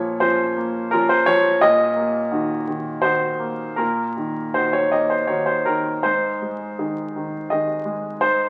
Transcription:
0.00 1.58 A#2 medium
0.00 0.19 F3 soft
0.00 0.57 A#3 soft
0.00 0.22 C#5 medium
0.20 0.53 F3 soft
0.20 0.54 C#4 soft
0.20 0.54 F4 soft
0.20 0.92 C5 medium
0.57 1.13 A#3 soft
0.91 1.24 F3 soft
0.91 1.24 C#4 soft
0.91 1.24 F4 soft
0.91 1.09 A#4 medium
1.09 1.27 C5 medium
1.26 1.61 F3 medium
1.26 1.61 C#5 loud
1.61 3.75 A#2 medium
1.61 3.03 D#5 loud
1.96 2.53 A#3 soft
2.31 2.63 D#3 soft
2.31 2.63 D#4 soft
2.31 2.63 F#4 soft
2.68 3.00 D#3 soft
3.02 3.36 D#3 soft
3.02 3.36 D#4 soft
3.02 3.36 F#4 soft
3.02 3.78 C5 medium
3.39 4.01 A#3 soft
3.76 6.01 A#2 medium
3.76 4.54 A#4 medium
4.17 4.54 D#3 soft
4.54 4.89 D#3 soft
4.54 4.89 D#4 soft
4.54 4.89 F#4 soft
4.54 4.73 C5 medium
4.73 4.92 C#5 medium
4.92 5.52 A#3 soft
4.92 5.10 D#5 medium
5.10 5.29 C5 medium
5.27 5.63 D#3 soft
5.27 5.64 D#4 soft
5.27 5.64 F#4 soft
5.27 5.47 C#5 medium
5.46 5.66 C5 medium
5.65 6.05 D#3 soft
5.65 6.04 A#4 medium
6.03 8.17 G#2 soft
6.03 7.50 C5 medium
6.42 7.00 G#3 soft
6.78 7.11 D#3 soft
6.78 7.12 D#4 soft
6.78 7.12 G#4 soft
7.16 7.50 D#3 soft
7.50 7.83 D#3 soft
7.50 7.83 D#4 soft
7.50 7.84 G#4 soft
7.50 8.21 D#5 medium
7.85 8.42 G#3 soft
8.21 8.49 G#2 soft
8.21 8.49 C5 medium

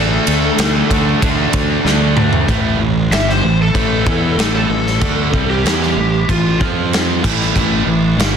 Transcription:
0.00 0.18 A1 loud
0.00 0.56 D3 loud
0.00 0.57 A3 loud
0.00 0.58 D4 loud
0.00 1.19 A4 medium
0.27 0.50 D2 medium
0.27 ride medium
0.57 0.81 D2 loud
0.57 0.88 D3 medium
0.57 0.88 A3 loud
0.57 0.88 D4 loud
0.57 snare loud
0.57 ride loud
0.89 1.12 D2 medium
0.89 1.19 D3 loud
0.89 1.20 A3 loud
0.89 1.21 D4 loud
0.89 kick medium
0.89 ride medium
1.21 1.44 D2 loud
1.21 1.83 D3 medium
1.21 1.84 A3 medium
1.21 1.84 D4 loud
1.21 kick loud
1.21 ride loud
1.53 1.76 D2 medium
1.53 kick medium
1.53 ride medium
1.84 2.29 D2 medium
1.84 2.15 D3 medium
1.84 2.15 A3 loud
1.84 2.16 D4 loud
1.84 snare medium
2.16 2.46 D3 medium
2.16 2.46 A3 loud
2.16 2.47 D4 loud
2.16 mid tom loud
2.33 floor tom loud
2.47 2.78 A1 loud
2.47 2.78 A2 loud
2.47 2.79 E3 loud
2.47 2.79 A3 loud
2.47 kick loud
2.47 crash medium
2.79 3.09 A1 medium
2.79 3.05 A2 medium
2.79 3.05 E3 medium
3.10 3.41 G1 loud
3.10 3.42 G2 loud
3.10 3.42 D3 medium
3.10 3.42 G3 loud
3.10 3.28 E5 medium
3.10 snare loud
3.10 crash medium
3.30 3.60 C5 loud
3.30 snare soft
3.43 3.73 A1 medium
3.43 3.69 A2 medium
3.43 3.69 E3 medium
3.62 4.53 A4 medium
3.74 4.04 A1 medium
3.74 4.05 A2 medium
3.74 4.05 E3 medium
3.74 4.06 A3 medium
3.74 kick medium
3.74 crash medium
4.06 4.36 E2 medium
4.06 4.36 E3 medium
4.06 4.37 B3 loud
4.06 4.37 E4 medium
4.06 kick loud
4.37 4.68 A1 loud
4.37 4.68 A2 loud
4.37 4.68 E3 loud
4.37 4.69 A3 loud
4.37 snare loud
4.37 crash medium
4.56 5.48 A4 medium
4.69 4.99 A1 medium
4.69 4.95 A2 medium
4.69 4.95 E3 medium
4.87 snare soft
5.00 5.31 D2 loud
5.00 5.32 D3 loud
5.00 5.32 A3 loud
5.00 5.33 D4 loud
5.00 kick loud
5.00 crash medium
5.32 5.63 C2 loud
5.32 5.64 C3 medium
5.32 5.64 G3 medium
5.32 5.64 C4 loud
5.32 kick loud
5.50 6.27 G4 medium
5.64 5.94 E2 medium
5.64 5.96 E3 loud
5.64 5.96 B3 loud
5.64 5.96 E4 loud
5.64 snare loud
5.64 crash medium
5.83 snare soft
5.96 6.26 A1 medium
5.96 6.22 A2 medium
5.96 6.22 E3 medium
6.28 6.59 A1 medium
6.28 6.54 A2 medium
6.28 6.54 E3 medium
6.28 6.60 F4 loud
6.28 kick medium
6.28 crash medium
6.58 7.20 F2 medium
6.58 7.22 F3 medium
6.58 7.22 C4 medium
6.58 7.22 F4 loud
6.58 kick loud
6.93 snare loud
6.93 crash medium
7.23 7.54 A1 medium
7.23 7.54 A2 loud
7.23 7.54 E3 loud
7.23 7.54 A3 medium
7.23 kick loud
7.23 crash loud
7.42 snare soft
7.55 7.85 A1 loud
7.55 7.85 A2 loud
7.55 7.85 E3 loud
7.55 7.87 A3 loud
7.55 kick medium
7.55 crash medium
7.86 8.16 A1 medium
7.86 8.12 A2 medium
7.86 8.12 E3 medium
8.17 8.37 G1 loud
8.17 8.37 G2 medium
8.17 8.37 D3 loud
8.17 8.37 G3 loud
8.17 snare loud
8.17 crash medium

